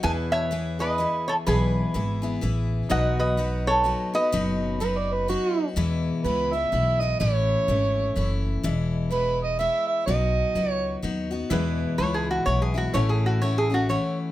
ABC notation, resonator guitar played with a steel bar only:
X:1
M:3/4
L:1/8
Q:"Swing" 1/4=126
K:E
V:1 name="Resonator guitar played with a steel bar"
[eg] [ce]2 [Bd]2 [Ac] | [GB]4 z2 | [df] [Bd]2 [Ac]2 [Bd]- | [Bd]4 z2 |
z6 | z6 | z6 | z6 |
z2 (3c G F (3c G F | (3c G F (3c G F c z |]